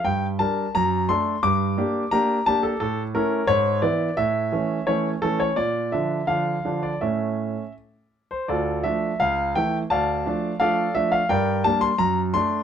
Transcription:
<<
  \new Staff \with { instrumentName = "Grand piano" } { \time 2/4 \key d \minor \tempo 4 = 86 g''8 a''8 bes''8 c'''8 | d'''4 bes''8 a''16 a'16 | a'8 bes'8 cis''8 d''8 | e''4 cis''8 a'16 cis''16 |
d''8 e''8 f''8. d''16 | e''4 r8. c''16 | <f' a' d''>8 e''8 f''8 g''8 | <d'' f'' a''>4 <a' d'' f''>8 e''16 f''16 |
<bes' d'' g''>8 a''16 c'''16 bes''8 c'''8 | }
  \new Staff \with { instrumentName = "Grand piano" } { \time 2/4 \key d \minor g,8 <g d' bes'>8 fis,8 <a d' a'>8 | g,8 <bes d' g'>8 <bes d' g'>8 <bes d' g'>8 | a,8 <a cis' e'>8 gis,8 <e b e'>8 | a,8 <e a cis'>8 <e a cis'>8 <e a cis'>8 |
bes,8 <d f d'>8 <d f d'>8 <d f d'>8 | <a, a cis'>4 r4 | d,8 <f a d'>8 cis,8 <e a e'>8 | d,8 <f a d'>8 <f a d'>8 <f a d'>8 |
g,8 <g bes d'>8 fis,8 <a d'>8 | }
>>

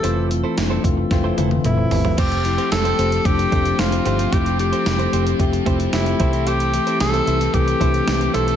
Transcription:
<<
  \new Staff \with { instrumentName = "Tenor saxophone" } { \time 4/4 \key f \lydian \tempo 4 = 112 a'8 r2 r8 e'4 | g'4 a'4 g'4 f'4 | g'8 g'2 r8 e'4 | g'4 a'4 g'4. a'8 | }
  \new Staff \with { instrumentName = "Clean electric guitar" } { \time 4/4 \key f \lydian <c' e' a' c''>8 r16 <c' e' a' c''>16 r16 <c' e' a' c''>16 r8. <c' e' a' c''>16 <c' e' a' c''>16 r4 r16 | <a c' g' c''>8 r16 <a c' g' c''>16 r16 <a c' g' c''>16 <a c' g' c''>16 r8. <a c' g' c''>16 r8. <a c' g' c''>16 <a c' g' c''>16 | <a c' g' c''>8 r16 <a c' g' c''>16 r16 <a c' g' c''>16 <a c' g' c''>16 r8. <a c' g' c''>16 r8. <c' e' a' c''>16 <c' e' a' c''>16 | <c' e' a' c''>8 r16 <c' e' a' c''>16 r16 <c' e' a' c''>16 <c' e' a' c''>16 r8. <c' e' a' c''>16 r8. <c' e' a' c''>16 <c' e' a' c''>16 | }
  \new Staff \with { instrumentName = "Distorted electric guitar" } { \time 4/4 \key f \lydian r1 | <f c' f'>8 <c' f'>4. <f c' f'>2 | <f c' f'>8 <c' f'>4. <f c' f'>4. <c g c'>8~ | <c g c'>8 <g c'>4. <c g c'>2 | }
  \new Staff \with { instrumentName = "Tine electric piano" } { \time 4/4 \key f \lydian << { r2. <f' a'>16 <a' c''>16 <g' b'>16 <f' a'>16~ | <f' a'>16 r2. r8. | r1 | r1 | } \\ { <e a c' f'>8 <e a c' f'>8 <e a c' d'>8 <e a c' f'>8 <e a c' f'>8 <e a c' e'>8 r4 | <f a c' g'>8 <f a c' e'>8 <f a c' g'>8 <f a c' g'>8 <f a c' d'>8 <f a c' d'>8 <f a c' e'>8 <f a c' g'>8 | <f a c' e'>8 <f a c' g'>8 <f a c' e'>8 <f a c' g'>8 <f a c' g'>8 <f a c' e'>8 <f a c' g'>8 <e a c' g'>8~ | <e a c' g'>8 <e a c' g'>8 <c' g'>8 <e a c' g'>8 <e a c' a'>8 <e a c'>8 <e a c' g'>8 <e a c' g'>8 | } >> }
  \new Staff \with { instrumentName = "Fingered electric bass" } { \clef bass \time 4/4 \key f \lydian f,,4 f,,8 f,,8 f,,8 f,,8 f,,8 g,,8 | f,,4 f,,8 f,,8 f,,8 f,,8 f,,8 g,,8 | f,,4 f,,8 f,,8 f,,8 f,,8 f,,8 c,8~ | c,4 c,8 c,8 c,8 c,8 c,8 b,,8 | }
  \new DrumStaff \with { instrumentName = "Drums" } \drummode { \time 4/4 hh8 hh8 <hh sn tamb>8 <hh bd>8 <hh bd sn>8 <hh tommh>16 tommh16 <hh toml>8 <hho tomfh>16 tomfh16 | <cymc hh bd>16 hh16 hh16 hh16 <hh sn tamb>16 hh16 hh16 hh16 <hh bd>16 hh16 <hh bd>16 hh16 <hh sn tamb>16 hh16 hh16 hh16 | <hh bd>16 hh16 hh16 hh16 <hh sn tamb>16 hh16 hh16 hh16 <hh bd>16 hh16 <hh bd>16 hh16 <hh sn tamb>16 hh16 <hh bd>16 hh16 | hh16 hh16 hh16 hh16 <hh sn tamb>16 hh16 hh16 hh16 <hh bd>16 hh16 <hh bd>16 hh16 <hh sn tamb>16 hh16 hh16 hh16 | }
>>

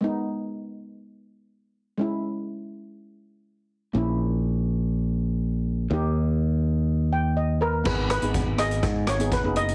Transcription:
<<
  \new Staff \with { instrumentName = "Steel pan" } { \time 4/4 \key gis \minor \tempo 4 = 123 r1 | r1 | r1 | r2. r8 ais'8 |
b'8 b'4 dis''4 cis''8 b'8 dis''8 | }
  \new Staff \with { instrumentName = "Steel pan" } { \time 4/4 \key gis \minor << { r1 | r1 | r1 | r2 r8 g''8 dis''8 b'8 |
r1 | } \\ { <gis b dis'>1 | <gis cis' e'>1 | <ais cis' e'>1 | <ais dis' g'>1 |
<b dis' gis'>8 r16 <b dis' gis'>8 r16 <b dis' gis'>8. r8 <b dis' gis'>16 r16 <b dis' gis'>8 r16 | } >> }
  \new Staff \with { instrumentName = "Fingered electric bass" } { \clef bass \time 4/4 \key gis \minor r1 | r1 | ais,,1 | dis,1 |
gis,,8. gis,,8 gis,,8. gis,8 gis,,8. fis,,8. | }
  \new DrumStaff \with { instrumentName = "Drums" } \drummode { \time 4/4 r4 r4 r4 r4 | r4 r4 r4 r4 | r4 r4 r4 r4 | r4 r4 r4 r4 |
<cymc bd>8 <hh ss>16 hh16 <hh bd>8 <hh ss>16 hh16 <hh bd ss>8 <hh ss>16 hh16 <hh bd>8 hh16 hh16 | }
>>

